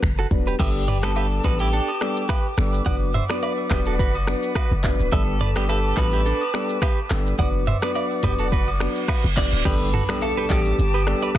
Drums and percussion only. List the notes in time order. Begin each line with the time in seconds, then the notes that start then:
0.03 finger snap, kick, cross-stick, shaker
0.31 kick, shaker
0.48 shaker
0.59 kick, crash, high agogo, shaker
0.88 mid tom, shaker
1.03 finger snap, cross-stick, high agogo, shaker
1.16 low woodblock, shaker
1.44 kick, high agogo, shaker
1.59 shaker
1.73 shaker
1.88 high agogo
2.01 finger snap, cross-stick, shaker
2.17 shaker
2.29 finger snap, kick, cross-stick, high agogo, low woodblock, shaker
2.57 finger snap, cross-stick, shaker
2.74 shaker
2.86 kick, high agogo, shaker
3.14 mid tom, shaker
3.29 finger snap, cross-stick, high agogo, shaker
3.42 low woodblock, shaker
3.70 finger snap, kick, cross-stick, clap, high agogo, shaker
3.85 shaker
3.99 kick, shaker
4.15 high agogo
4.27 finger snap, cross-stick, shaker
4.43 shaker
4.55 finger snap, kick, cross-stick, high agogo, low woodblock, shaker
4.84 kick, clap, shaker
5.00 shaker
5.12 kick, high agogo, shaker
5.40 mid tom, shaker
5.56 finger snap, cross-stick, high agogo, shaker
5.69 low woodblock, shaker
5.96 kick, clap, high agogo, shaker
6.12 shaker
6.26 shaker
6.41 high agogo
6.54 finger snap, cross-stick, shaker
6.69 shaker
6.82 finger snap, kick, cross-stick, high agogo, low woodblock, shaker
7.10 finger snap, cross-stick, clap, shaker
7.27 shaker
7.39 kick, high agogo, shaker
7.67 mid tom, shaker
7.82 finger snap, cross-stick, high agogo, shaker
7.95 low woodblock, shaker
8.23 kick, mid tom, open hi-hat, high agogo, shaker
8.38 shaker
8.52 kick, shaker
8.68 high agogo
8.80 finger snap, cross-stick, shaker
8.96 shaker
9.08 finger snap, kick, cross-stick, high agogo, low woodblock, shaker
9.37 kick, clap, open hi-hat, shaker
9.53 shaker
9.65 kick, crash, high agogo, shaker
9.93 mid tom, shaker
10.09 finger snap, cross-stick, high agogo, shaker
10.22 low woodblock, shaker
10.49 kick, clap, open hi-hat, high agogo, shaker
10.65 shaker
10.79 shaker
10.94 high agogo
11.07 finger snap, cross-stick, shaker
11.22 shaker
11.35 kick, cross-stick, high agogo, low woodblock, shaker